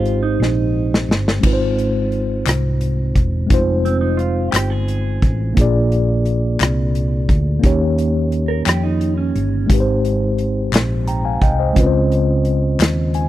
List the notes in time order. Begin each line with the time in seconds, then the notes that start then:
Already playing: G#1 G#2 G#3 C4 D#4 F4 G4 C5
0.06 closed hi-hat
0.23 D#4
0.40 A#1, snare
0.94 snare
1.08 G1, snare
1.28 snare
1.40 G#1 G#2 G#3 C4 D#4, kick, crash
1.45 F4 B4
1.53 C5
1.79 closed hi-hat
2.12 closed hi-hat
2.46 C2, cross-stick, clap, closed hi-hat
2.81 closed hi-hat
3.15 E1, kick, closed hi-hat
3.47 F1 G#3 C4 D#4, kick, closed hi-hat
3.52 F4 C5
3.85 C4, closed hi-hat
4.01 D#4
4.17 F4, closed hi-hat
4.51 G1 G4, clap, closed hi-hat
4.56 cross-stick
4.70 G#4
4.88 closed hi-hat
5.22 A1, kick, closed hi-hat
5.54 A#1 A#2 A#3 D4 F4, kick, closed hi-hat
5.59 G#4 D5
5.92 closed hi-hat
6.26 closed hi-hat
6.60 C2, cross-stick, clap, closed hi-hat
6.95 closed hi-hat
7.29 D2, kick, closed hi-hat
7.59 D#3 A#3 C#4 D#4
7.63 D#2 G4 C#5, kick, closed hi-hat
7.98 closed hi-hat
8.32 closed hi-hat
8.48 A#4
8.65 F2 G4, cross-stick, clap, closed hi-hat
8.83 D#4
9.01 closed hi-hat
9.17 C#4
9.35 G1, closed hi-hat
9.66 G#1 G#2 G#3 C4 D#4, kick, closed hi-hat
9.72 G4 B4
9.80 C5
10.05 closed hi-hat
10.38 closed hi-hat
10.72 A#1, snare, clap, closed hi-hat
11.07 G5 A#5, closed hi-hat
11.25 F5 G#5
11.41 C2 D#5 G5, kick, closed hi-hat
11.59 C5 D#5
11.73 C#2 C#3 G#3 C4 C#4, kick, closed hi-hat
11.78 F4 B4
11.87 C5
12.12 closed hi-hat
12.45 closed hi-hat
12.79 D#2, snare, clap, closed hi-hat
13.14 G#5, closed hi-hat